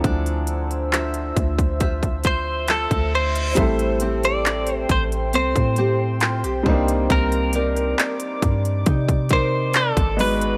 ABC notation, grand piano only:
X:1
M:4/4
L:1/8
Q:1/4=68
K:Am
V:1 name="Grand piano"
[F,CDEA]6- [F,CDEA] z | [G,A,CEA]6- [G,A,CEA] [G,_B,CD_E]- | [G,_B,CD_E]6- [G,B,CDE] [^G,=B,^D^FB] |]